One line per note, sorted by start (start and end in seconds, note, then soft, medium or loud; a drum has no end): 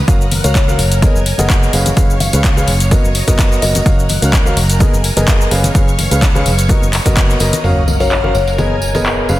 0.08 0.38 F#1 loud
0.08 0.23 C#4 medium
0.08 0.23 F#4 medium
0.08 1.72 A#4 medium
0.08 0.23 A#4 medium
0.08 0.23 F5 medium
0.08 0.78 F#5 medium
0.08 0.78 F6 medium
0.08 kick loud
0.08 closed hi-hat medium
0.08 tambourine soft
0.08 shaker medium
0.21 shaker soft
0.31 open hi-hat loud
0.31 tambourine medium
0.31 high conga medium
0.44 0.80 C#2 medium
0.44 0.58 C#4 medium
0.44 0.58 F#4 medium
0.44 0.58 A#4 medium
0.44 0.51 C#5 medium
0.44 0.58 F5 medium
0.44 closed hi-hat medium
0.44 tambourine medium
0.44 shaker medium
0.55 0.63 C#5 medium
0.55 kick loud
0.55 clap loud
0.55 closed hi-hat soft
0.55 shaker medium
0.68 0.78 C#4 medium
0.68 0.78 F#4 medium
0.68 0.78 A#4 medium
0.68 0.78 F5 loud
0.68 high conga medium
0.68 shaker soft
0.79 1.09 F#1 medium
0.79 1.72 G#5 medium
0.79 open hi-hat medium
0.79 tambourine medium
0.91 closed hi-hat medium
0.91 tambourine soft
0.91 shaker medium
1.02 1.18 B3 medium
1.02 1.18 G#4 medium
1.02 1.18 A#4 medium
1.02 1.18 D#5 loud
1.02 kick loud
1.02 closed hi-hat medium
1.02 tambourine soft
1.02 high conga medium
1.02 shaker medium
1.15 1.31 F#1 medium
1.15 shaker soft
1.26 open hi-hat loud
1.26 tambourine medium
1.38 1.68 F#1 medium
1.38 1.71 B3 loud
1.38 1.71 G#4 medium
1.38 1.71 A#4 medium
1.38 1.71 D#5 loud
1.38 1.53 F#5 medium
1.38 closed hi-hat medium
1.38 tambourine soft
1.38 high conga medium
1.38 shaker medium
1.50 kick loud
1.50 clap loud
1.50 closed hi-hat soft
1.50 shaker medium
1.63 shaker soft
1.73 1.90 F#1 medium
1.73 1.88 C#4 medium
1.73 1.88 G#4 medium
1.73 1.88 B4 medium
1.73 3.84 C#5 medium
1.73 2.90 F5 medium
1.73 1.88 F5 loud
1.73 2.90 C#6 medium
1.73 open hi-hat medium
1.73 tambourine medium
1.86 closed hi-hat medium
1.86 tambourine soft
1.86 high conga medium
1.86 shaker medium
1.96 2.27 F#1 medium
1.96 2.12 C#4 medium
1.96 2.12 G#4 medium
1.96 2.12 B4 medium
1.96 2.12 F5 medium
1.96 kick loud
1.96 closed hi-hat soft
1.96 tambourine soft
1.96 shaker medium
2.10 shaker soft
2.20 2.68 F5 medium
2.20 open hi-hat loud
2.20 tambourine medium
2.20 high conga medium
2.32 2.69 C#2 medium
2.32 2.47 C#4 medium
2.32 2.47 G#4 medium
2.32 2.47 B4 medium
2.32 2.47 F5 medium
2.32 closed hi-hat medium
2.32 tambourine soft
2.32 shaker medium
2.44 kick loud
2.44 clap loud
2.44 closed hi-hat medium
2.44 shaker medium
2.57 2.70 C#4 medium
2.57 2.71 G#4 medium
2.57 2.70 B4 medium
2.57 2.70 F5 loud
2.57 high conga medium
2.57 shaker soft
2.67 2.98 F#1 medium
2.67 open hi-hat medium
2.67 tambourine medium
2.80 closed hi-hat medium
2.80 tambourine soft
2.80 shaker medium
2.91 3.07 B3 medium
2.91 3.07 F#4 medium
2.91 3.07 A#4 medium
2.91 3.06 D#5 loud
2.91 3.85 A#5 medium
2.91 3.85 D#6 medium
2.91 kick loud
2.91 closed hi-hat medium
2.91 tambourine soft
2.91 high conga medium
2.91 shaker medium
3.04 3.20 F#1 medium
3.04 shaker soft
3.15 open hi-hat loud
3.15 tambourine medium
3.27 3.57 F#1 medium
3.27 3.60 B3 loud
3.27 3.60 F#4 medium
3.27 3.60 A#4 medium
3.27 3.60 D#5 loud
3.27 kick medium
3.27 closed hi-hat medium
3.27 tambourine medium
3.27 high conga medium
3.27 shaker medium
3.39 kick loud
3.39 clap loud
3.39 closed hi-hat medium
3.39 tambourine soft
3.39 shaker medium
3.52 shaker soft
3.62 3.79 F#1 medium
3.62 3.77 B3 medium
3.62 3.77 F#4 medium
3.62 3.77 A#4 medium
3.62 3.91 D#5 medium
3.62 3.77 D#5 medium
3.62 open hi-hat medium
3.62 tambourine medium
3.75 closed hi-hat medium
3.75 tambourine soft
3.75 high conga medium
3.75 shaker medium
3.86 4.16 F#1 loud
3.86 4.01 C#4 medium
3.86 4.01 F#4 medium
3.86 4.01 A#4 medium
3.86 5.50 A#4 medium
3.86 4.01 F5 medium
3.86 4.56 F#5 medium
3.86 4.56 F6 medium
3.86 kick loud
3.86 closed hi-hat medium
3.86 tambourine soft
3.86 shaker medium
3.99 shaker soft
4.09 open hi-hat loud
4.09 tambourine medium
4.09 high conga medium
4.22 4.58 C#2 medium
4.22 4.36 C#4 medium
4.22 4.36 F#4 medium
4.22 4.36 A#4 medium
4.22 4.36 F5 medium
4.22 closed hi-hat medium
4.22 tambourine medium
4.22 shaker medium
4.33 kick loud
4.33 clap loud
4.33 closed hi-hat medium
4.33 shaker medium
4.45 4.55 C#4 medium
4.45 4.55 F#4 medium
4.45 4.55 A#4 medium
4.45 4.55 F5 loud
4.45 high conga medium
4.45 shaker soft
4.57 4.87 F#1 medium
4.57 5.50 G#5 medium
4.57 open hi-hat medium
4.57 tambourine medium
4.69 closed hi-hat medium
4.69 tambourine medium
4.69 shaker medium
4.80 4.95 B3 medium
4.80 4.95 G#4 medium
4.80 4.95 A#4 medium
4.80 4.95 D#5 loud
4.80 kick loud
4.80 closed hi-hat medium
4.80 tambourine soft
4.80 high conga medium
4.80 shaker medium
4.93 5.09 F#1 medium
4.93 shaker soft
5.04 open hi-hat loud
5.04 tambourine medium
5.16 5.46 F#1 medium
5.16 5.49 B3 loud
5.16 5.49 G#4 medium
5.16 5.49 A#4 medium
5.16 5.49 D#5 loud
5.16 closed hi-hat medium
5.16 tambourine soft
5.16 high conga medium
5.16 shaker medium
5.28 kick loud
5.28 clap loud
5.28 closed hi-hat medium
5.28 shaker medium
5.41 shaker soft
5.51 5.68 F#1 medium
5.51 5.66 C#4 medium
5.51 5.66 G#4 medium
5.51 5.66 B4 medium
5.51 7.62 C#5 medium
5.51 5.66 F5 loud
5.51 6.68 F5 medium
5.51 6.68 C#6 medium
5.51 open hi-hat medium
5.51 tambourine medium
5.64 closed hi-hat medium
5.64 tambourine soft
5.64 high conga loud
5.64 shaker medium
5.75 6.05 F#1 loud
5.75 5.90 C#4 medium
5.75 5.90 G#4 medium
5.75 5.90 B4 medium
5.75 5.90 F5 medium
5.75 kick loud
5.75 closed hi-hat medium
5.75 tambourine soft
5.75 shaker medium
5.88 shaker soft
5.99 open hi-hat loud
5.99 tambourine medium
5.99 high conga medium
6.11 6.47 C#2 medium
6.11 6.25 C#4 medium
6.11 6.25 G#4 medium
6.11 6.25 B4 medium
6.11 6.25 F5 medium
6.11 closed hi-hat medium
6.11 tambourine medium
6.11 shaker medium
6.22 kick loud
6.22 clap loud
6.22 closed hi-hat medium
6.22 shaker medium
6.35 6.48 C#4 medium
6.35 6.48 G#4 medium
6.35 6.48 B4 medium
6.35 6.48 F5 medium
6.35 high conga medium
6.35 shaker soft
6.46 6.76 F#1 medium
6.46 open hi-hat medium
6.46 tambourine medium
6.58 closed hi-hat medium
6.58 tambourine soft
6.58 shaker medium
6.69 6.84 B3 medium
6.69 6.84 F#4 medium
6.69 6.85 A#4 medium
6.69 6.84 D#5 loud
6.69 7.63 A#5 medium
6.69 7.63 D#6 medium
6.69 kick loud
6.69 closed hi-hat medium
6.69 tambourine soft
6.69 high conga medium
6.69 shaker medium
6.82 6.98 F#1 medium
6.82 shaker soft
6.93 clap medium
6.93 open hi-hat loud
6.93 tambourine medium
7.05 7.35 F#1 medium
7.05 7.38 B3 loud
7.05 7.38 F#4 medium
7.05 7.38 A#4 medium
7.05 7.38 D#5 loud
7.05 kick medium
7.05 closed hi-hat medium
7.05 tambourine medium
7.05 high conga medium
7.05 shaker medium
7.16 kick loud
7.16 clap loud
7.16 closed hi-hat medium
7.16 tambourine soft
7.16 shaker medium
7.30 shaker soft
7.40 7.49 F#1 loud
7.40 7.55 B3 medium
7.40 7.55 F#4 medium
7.40 7.55 A#4 medium
7.40 7.55 D#5 loud
7.40 open hi-hat medium
7.40 tambourine medium
7.53 closed hi-hat medium
7.53 tambourine medium
7.53 high conga medium
7.53 shaker medium
7.64 8.33 F#1 medium
7.64 7.79 C#4 medium
7.64 7.79 F#4 medium
7.64 9.28 A#4 medium
7.64 7.79 A#4 medium
7.64 7.79 F5 medium
7.64 8.34 F#5 medium
7.64 8.34 F6 medium
7.64 closed hi-hat medium
7.64 tambourine soft
7.64 sub drop medium
7.88 tambourine medium
7.88 high conga medium
8.00 8.14 C#4 medium
8.00 8.14 F#4 medium
8.00 8.14 A#4 medium
8.00 8.07 C#5 medium
8.00 8.14 F5 medium
8.00 closed hi-hat medium
8.00 tambourine soft
8.11 8.19 C#5 medium
8.11 clap loud
8.11 closed hi-hat soft
8.11 tambourine soft
8.24 8.33 C#4 medium
8.24 8.33 F#4 medium
8.24 8.33 A#4 medium
8.24 8.33 F5 medium
8.24 high conga medium
8.35 9.27 F#1 medium
8.35 9.01 C#5 medium
8.35 9.28 G#5 medium
8.35 tambourine medium
8.47 closed hi-hat medium
8.47 tambourine soft
8.58 8.73 B3 medium
8.58 8.73 G#4 medium
8.58 8.73 A#4 medium
8.58 8.73 D#5 medium
8.58 closed hi-hat medium
8.58 tambourine soft
8.58 high conga medium
8.82 tambourine medium
8.95 9.27 B3 medium
8.95 9.27 G#4 medium
8.95 9.27 A#4 medium
8.95 9.27 D#5 loud
8.95 closed hi-hat medium
8.95 tambourine soft
8.95 high conga medium
9.06 clap loud
9.06 closed hi-hat medium
9.06 tambourine soft
9.29 9.40 F#1 medium
9.29 9.40 C#4 medium
9.29 9.40 G#4 medium
9.29 9.40 B4 medium
9.29 9.40 C#5 medium
9.29 9.40 F5 medium
9.29 9.40 C#6 medium
9.29 tambourine medium